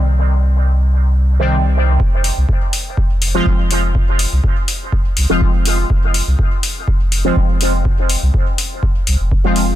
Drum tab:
HH |--------|-o-o-o-o|-o-o-o-o|-o-o-o-o|
BD |--------|o-o-o-o-|o-o-o-o-|o-o-o-o-|

HH |-o-o-o-o|
BD |o-o-o-o-|